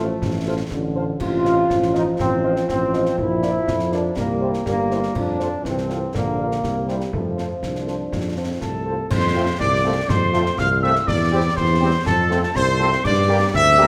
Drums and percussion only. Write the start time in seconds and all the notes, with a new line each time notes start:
0.22 concert bass drum, snare
0.71 concert bass drum, snare
1.20 concert bass drum, crash
1.45 snare
1.70 concert bass drum, snare
1.83 snare
1.95 snare
2.19 concert bass drum, snare
2.56 snare
2.69 concert bass drum, snare
2.93 snare
3.06 snare
3.18 concert bass drum
3.43 snare
3.68 concert bass drum, snare
3.79 snare
3.92 snare
4.17 concert bass drum, snare
4.54 snare
4.66 concert bass drum, snare
4.91 snare
5.03 snare
5.15 concert bass drum, crash
5.40 snare
5.65 concert bass drum, snare
5.78 snare
5.90 snare
6.15 concert bass drum, snare
6.52 snare
6.64 concert bass drum, snare
6.89 snare
7.01 snare
7.13 concert bass drum
7.38 snare
7.63 concert bass drum, snare
7.75 snare
7.88 snare
8.12 concert bass drum, snare
8.61 concert bass drum, snare
9.11 concert bass drum, snare, crash
9.60 concert bass drum, snare
10.09 concert bass drum, snare
10.34 snare
10.46 snare
10.58 concert bass drum, snare
10.95 snare
11.08 concert bass drum, snare
11.57 concert bass drum, snare
12.06 concert bass drum, snare
12.31 snare
12.43 snare
12.56 concert bass drum, snare
12.93 snare
13.05 concert bass drum, snare, crash
13.54 concert bass drum, snare